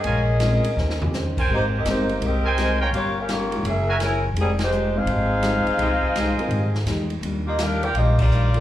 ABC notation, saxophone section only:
X:1
M:4/4
L:1/16
Q:"Swing" 1/4=167
K:Ebmix
V:1 name="Saxophone section"
[DABe]8- [DABe]3 z4 z | [B,EGc]2 [CGBe]2 [B,EGc]4 [CGBe]4 [EBca]2 z2 | [B,FGd]2 [DGBf]2 [B,FGd]4 [DAB_f]4 [_FBda]2 z2 | [E,G,CA]2 [A,EGc]4 [EAcf]8- [EAcf]2- |
[EAcf]12 z4 | z2 [B,FGe]2 [=DGBf]2 [FB=dg]2 [B,FGe]2 [B,FGd]6 |]